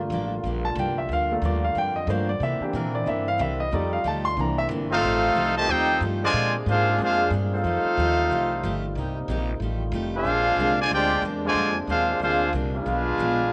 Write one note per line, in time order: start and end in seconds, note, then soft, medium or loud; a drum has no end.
0.00 3.67 D3 medium
0.00 2.37 G3 medium
0.00 1.06 A3 medium
0.00 1.06 A#3 soft
0.00 1.06 F4 medium
0.00 2.36 F4 medium
0.10 0.43 A1 loud
0.10 0.33 G2 medium
0.10 0.33 F3 medium
0.10 0.33 A#3 medium
0.10 0.34 D4 medium
0.44 0.75 A#1 medium
0.44 0.66 G2 medium
0.44 0.66 F3 medium
0.44 0.67 A#3 medium
0.44 0.67 D4 medium
0.65 0.77 A5 medium
0.75 1.08 C2 loud
0.75 0.99 G2 medium
0.75 0.99 F3 medium
0.75 0.99 A#3 medium
0.75 0.99 D4 medium
0.80 0.98 G5 medium
0.98 1.10 E5 medium
1.09 1.41 D2 medium
1.09 1.32 G2 soft
1.09 1.32 F3 medium
1.09 1.32 A#3 medium
1.13 1.33 D4 medium
1.13 1.31 F5 medium
1.32 1.74 A3 medium
1.32 1.74 A#3 soft
1.32 1.74 F4 medium
1.32 1.44 A4 medium
1.42 1.74 D#2 loud
1.42 1.64 G2 medium
1.42 1.64 F3 medium
1.42 1.65 A#3 medium
1.42 1.65 D4 medium
1.42 1.64 D5 medium
1.64 1.76 F5 medium
1.75 2.06 F2 medium
1.75 1.97 G2 medium
1.75 1.97 F3 soft
1.75 1.97 A#3 medium
1.75 1.98 D4 medium
1.75 1.96 G5 medium
1.96 2.08 D#5 medium
2.07 2.39 G2 loud
2.07 2.30 G2 medium
2.07 2.30 F3 medium
2.07 2.26 A3 soft
2.07 2.27 A#3 soft
2.07 2.30 A#3 medium
2.07 2.31 D4 medium
2.07 2.27 F4 soft
2.07 2.29 C5 medium
2.29 2.41 D5 medium
2.40 2.59 C3 medium
2.40 2.63 C3 medium
2.40 2.63 E3 soft
2.40 2.63 A#3 medium
2.40 3.71 C4 medium
2.40 2.64 D4 medium
2.40 3.71 E4 medium
2.40 2.62 E5 medium
2.60 3.05 E3 medium
2.60 3.05 A#3 soft
2.60 3.06 D4 medium
2.60 2.74 G4 medium
2.60 muted upright bass stroke soft
2.73 3.05 A#2 medium
2.73 2.95 C3 medium
2.73 2.96 E3 medium
2.73 2.96 A#3 medium
2.73 2.96 D4 medium
2.73 2.94 A#4 medium
2.95 3.07 D5 medium
3.04 3.39 G2 medium
3.04 3.28 C3 medium
3.04 3.25 E3 soft
3.04 3.28 E3 medium
3.04 3.25 A#3 soft
3.04 3.28 A#3 medium
3.04 3.25 D4 soft
3.04 3.07 D#5 medium
3.08 3.29 D4 medium
3.08 3.27 E5 medium
3.28 3.40 F5 loud
3.38 3.71 C2 loud
3.38 3.60 C3 medium
3.38 3.61 E3 medium
3.38 3.61 A#3 medium
3.38 3.61 D4 medium
3.38 3.60 E5 medium
3.60 3.72 D#5 medium
3.70 4.03 F2 medium
3.70 3.93 F3 soft
3.70 4.36 G3 medium
3.70 3.96 G3 medium
3.70 4.36 A3 medium
3.70 3.94 A3 medium
3.70 3.97 A3 medium
3.70 4.36 D#4 medium
3.70 3.94 D#4 medium
3.70 3.97 D#4 medium
3.70 4.36 F4 medium
3.70 3.94 G4 medium
3.74 3.93 D5 medium
3.93 4.05 F5 medium
4.04 4.36 D2 medium
4.04 4.26 F3 medium
4.04 4.26 A3 medium
4.04 4.27 D#4 medium
4.04 4.27 G4 medium
4.04 4.26 A5 medium
4.25 4.37 C6 loud
4.37 4.68 C2 medium
4.37 4.59 C3 soft
4.37 4.87 D3 medium
4.37 4.88 E3 medium
4.37 4.60 E3 medium
4.37 4.87 A#3 medium
4.37 4.88 A#3 medium
4.37 4.60 A#3 medium
4.37 4.87 C4 medium
4.37 4.89 D4 medium
4.37 4.60 D4 medium
4.37 4.87 E4 medium
4.37 4.59 A#5 medium
4.58 4.66 E5 loud
4.69 5.01 G1 loud
4.69 4.92 C3 medium
4.69 4.92 E3 medium
4.69 4.92 A#3 medium
4.69 4.92 D4 medium
4.90 5.52 A3 medium
4.90 5.52 C4 medium
4.90 5.53 D#4 medium
4.90 5.52 F4 medium
4.90 5.53 A4 medium
4.90 5.53 C5 medium
4.90 5.53 F5 loud
5.03 5.35 A1 medium
5.03 6.34 D#3 medium
5.03 5.25 F3 medium
5.03 6.33 G3 medium
5.03 5.25 A3 medium
5.03 6.34 A3 medium
5.03 5.25 D#4 medium
5.03 6.33 F4 medium
5.03 5.26 G4 medium
5.35 5.67 C2 medium
5.35 5.57 F3 medium
5.35 5.57 A3 medium
5.35 5.58 D#4 medium
5.35 5.58 G4 medium
5.57 5.70 C3 medium
5.57 5.70 D#3 medium
5.57 5.70 A3 medium
5.57 5.69 G4 loud
5.57 5.69 C5 medium
5.57 5.69 D#5 medium
5.57 5.69 A5 loud
5.67 6.00 D#2 medium
5.67 5.90 F3 medium
5.67 5.91 A3 medium
5.67 6.02 C4 loud
5.67 6.02 D#4 medium
5.67 5.91 D#4 medium
5.67 6.03 D#4 medium
5.67 6.02 G4 medium
5.67 5.91 G4 medium
5.67 6.02 A4 medium
5.67 6.02 C5 medium
5.67 6.02 G5 loud
6.01 6.33 G2 loud
6.01 6.23 F3 medium
6.01 6.23 A3 medium
6.01 6.23 D#4 medium
6.01 6.23 G4 medium
6.23 6.53 D3 medium
6.23 6.53 F3 medium
6.23 6.53 G#3 loud
6.23 6.53 F4 medium
6.23 6.54 C5 medium
6.23 6.53 D5 medium
6.23 6.54 G#5 loud
6.31 6.66 A#2 medium
6.31 6.55 A#2 soft
6.31 7.62 C3 medium
6.31 6.55 G#3 medium
6.31 7.62 A#3 medium
6.31 7.62 D4 medium
6.31 7.63 G#4 medium
6.35 6.56 C4 soft
6.35 6.56 D4 medium
6.66 6.98 G#2 medium
6.66 6.88 A#2 medium
6.66 6.89 G#3 medium
6.66 6.98 G#3 medium
6.66 6.89 C4 medium
6.66 6.89 D4 medium
6.66 6.99 D4 medium
6.66 6.98 F4 medium
6.70 6.99 G#4 medium
6.70 6.99 C5 medium
6.70 6.99 F5 loud
6.99 7.30 F2 medium
6.99 7.21 A#2 soft
6.99 7.30 G#3 medium
6.99 7.21 G#3 soft
6.99 7.22 C4 medium
6.99 7.30 D4 medium
6.99 7.22 D4 medium
6.99 7.31 D4 medium
6.99 7.30 F4 medium
6.99 7.31 G#4 medium
6.99 7.31 C5 medium
7.03 7.32 F5 loud
7.30 7.63 G2 loud
7.30 7.53 A#2 medium
7.30 7.54 G#3 medium
7.30 7.54 C4 medium
7.30 7.54 D4 medium
7.54 8.79 A3 medium
7.54 8.80 C4 medium
7.54 8.80 D#4 medium
7.54 8.80 F4 medium
7.54 8.80 A4 medium
7.54 8.80 C5 medium
7.54 8.80 F5 medium
7.63 7.83 F2 medium
7.63 8.93 D#3 medium
7.63 7.86 F3 medium
7.63 9.58 G3 medium
7.63 8.93 A3 medium
7.63 7.86 A3 medium
7.63 7.87 D#4 medium
7.63 8.94 F4 medium
7.63 7.87 G4 medium
7.84 muted upright bass stroke soft
7.97 8.29 D#2 loud
7.97 8.19 F3 medium
7.97 8.20 A3 medium
7.97 8.20 D#4 medium
7.97 8.20 G4 medium
8.30 8.61 C2 medium
8.30 8.52 F3 medium
8.30 8.52 A3 medium
8.30 8.52 D#4 medium
8.30 8.53 G4 medium
8.63 8.95 G1 loud
8.63 8.84 F3 medium
8.63 8.85 A3 medium
8.63 8.85 D#4 medium
8.63 8.85 G4 medium
8.95 9.27 C2 medium
8.95 9.60 C3 medium
8.95 9.18 C3 medium
8.95 9.60 A#3 medium
8.95 9.18 A#3 medium
8.95 9.59 D#4 medium
8.99 9.18 D#4 medium
8.99 9.18 G4 medium
9.28 9.59 A#1 loud
9.28 9.50 C3 medium
9.28 9.50 A#3 medium
9.28 9.50 D#4 medium
9.28 9.51 G4 medium
9.60 9.91 A1 medium
9.60 10.25 D#3 medium
9.60 9.82 F3 medium
9.60 10.25 G3 medium
9.60 10.25 A3 medium
9.60 9.82 A3 medium
9.60 9.83 D#4 medium
9.60 10.25 F4 medium
9.60 9.83 G4 medium
9.92 10.24 F1 loud
9.92 10.14 F3 medium
9.92 10.14 A3 medium
9.92 10.15 D#4 medium
9.92 10.15 G4 medium
10.15 10.75 G#3 medium
10.15 10.75 D4 medium
10.15 10.76 D4 medium
10.15 10.75 F4 medium
10.15 10.75 G#4 medium
10.15 10.75 C5 medium
10.15 10.76 F5 loud
10.24 10.56 A#1 medium
10.24 10.47 A#2 soft
10.24 12.84 C3 medium
10.24 13.53 G#3 medium
10.24 10.47 G#3 soft
10.24 12.83 A#3 medium
10.24 10.47 C4 medium
10.24 12.83 D4 medium
10.24 10.48 D4 medium
10.57 10.88 C2 medium
10.57 10.80 A#2 medium
10.57 10.80 G#3 medium
10.57 10.80 C4 medium
10.57 10.80 D4 medium
10.80 10.92 D3 medium
10.80 10.92 F3 medium
10.80 10.92 G#3 medium
10.80 10.93 F4 medium
10.80 10.92 C5 medium
10.80 10.92 D5 loud
10.80 10.92 G#5 loud
10.89 11.21 D2 medium
10.89 11.12 A#2 medium
10.89 11.12 G#3 medium
10.89 11.13 C4 medium
10.93 11.23 G#3 loud
10.93 11.13 D4 medium
10.93 11.23 D4 loud
10.93 11.23 F4 medium
10.93 11.23 G4 medium
10.93 11.23 C5 medium
10.93 11.22 D5 loud
10.93 11.23 G5 loud
11.22 11.53 E2 loud
11.22 11.45 A#2 medium
11.22 11.45 G#3 medium
11.22 11.45 C4 medium
11.22 11.46 D4 medium
11.45 11.75 D3 loud
11.45 11.74 F3 loud
11.45 11.74 G#3 loud
11.45 11.75 F4 medium
11.45 11.75 C5 medium
11.45 11.75 D5 medium
11.45 11.75 G#5 loud
11.54 11.86 F2 medium
11.54 11.77 A#2 medium
11.54 11.77 G#3 medium
11.54 11.78 C4 soft
11.54 11.78 D4 medium
11.87 12.19 D#2 medium
11.87 12.10 A#2 medium
11.87 12.10 G#3 medium
11.87 12.20 G#3 medium
11.87 12.10 C4 medium
11.87 12.10 D4 medium
11.87 12.20 D4 medium
11.87 12.20 F4 medium
11.87 12.19 G#4 medium
11.87 12.20 C5 medium
11.87 12.19 F5 loud
12.19 12.52 D2 medium
12.19 12.42 A#2 medium
12.19 12.52 G#3 medium
12.19 12.43 G#3 medium
12.19 12.43 C4 soft
12.19 12.52 D4 medium
12.19 12.43 D4 medium
12.19 12.52 F4 medium
12.19 12.52 G#4 medium
12.19 12.52 C5 medium
12.19 12.52 F5 loud
12.53 12.85 C2 loud
12.53 12.75 A#2 medium
12.53 12.75 G#3 medium
12.53 12.75 C4 medium
12.53 12.76 D4 medium
12.74 13.53 G#3 medium
12.74 13.53 D4 medium
12.74 13.53 F4 medium
12.74 13.53 G#4 medium
12.74 13.53 B4 medium
12.74 13.53 F5 loud
12.84 13.17 B1 medium
12.84 13.07 B2 soft
12.84 13.53 D3 medium
12.84 13.08 F3 medium
12.84 13.08 G#3 medium
12.84 13.53 B3 medium
12.84 13.08 D4 medium
12.84 13.53 F4 medium
13.18 13.50 A#1 medium
13.18 13.40 B2 medium
13.18 13.40 F3 medium
13.18 13.40 G#3 medium
13.18 13.41 D4 medium